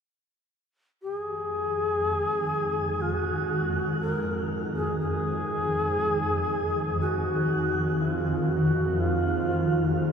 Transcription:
1.01 F2 D#3 G#3 G4
1.17 G#4
1.35 D#4
2.22 A#3
3.01 F#4
4.00 A#4
4.12 G#4
4.63 C5
4.76 G#4
4.99 G#4
7.00 F#4
8.01 F4
8.51 F#4
8.99 F4

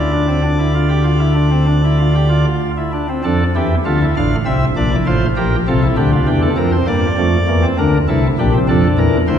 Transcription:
Already playing: D2 D3 E4 D5
0.13 D4
0.28 C4
0.44 D4
0.59 E4
0.75 F4
0.90 G4
1.04 F4
1.19 E4
1.34 D4
1.51 C4
1.67 D4
1.84 E4
2.00 F4
2.15 G4
2.29 F4
2.77 E4
2.93 D4
3.09 C4
3.24 F2 F3 D4 A4
3.56 E2 E3 E4 G4
3.85 D2 D3 F4 A4
4.01 E4
4.16 A1 A2 D4 F5
4.45 C2 C3 C4 E5
4.76 A#1 A#2 D4 D5
4.92 E4
5.06 A1 A2 F4 C5
5.37 A#1 A#2 G4 A#4
5.67 C2 C3 F4 A4
5.83 E4
5.97 D2 D3 D4 G4
6.13 F4
6.27 E2 E3 G4
6.42 A4
6.57 F2 F3 C4 A#4
6.72 C5
6.87 G2 G3 A#3 D5
7.17 F2 F3 A3
7.48 E2 E3 A#3
7.63 C4
7.78 D2 D3 D4 A#4
8.08 C2 C3 E4 A4
8.39 A#1 A#2 D4 G4
8.54 C4
8.68 F2 F3 D4 A4
8.98 E2 E3 A#4
9.28 D2 D3 E4 C5

